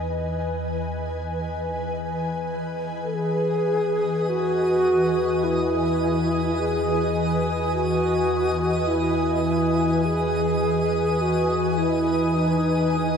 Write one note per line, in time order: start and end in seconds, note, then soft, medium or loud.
0.00 3.06 E2 medium
0.00 13.17 E3 medium
0.00 13.17 B4 medium
0.00 3.01 D#5 medium
0.00 13.17 G#5 medium
3.05 3.16 A4 medium
3.12 13.17 E2 medium
3.12 4.31 G#4 medium
3.12 13.17 D#5 medium
3.12 13.17 D#6 medium
4.29 5.45 F#4 loud
5.44 6.61 E4 medium
6.60 7.47 G#4 medium
7.74 8.89 F#4 medium
8.87 10.07 E4 medium
10.05 11.23 G#4 medium
11.21 11.79 F#4 medium
11.77 12.37 E4 medium
12.36 13.17 D#4 medium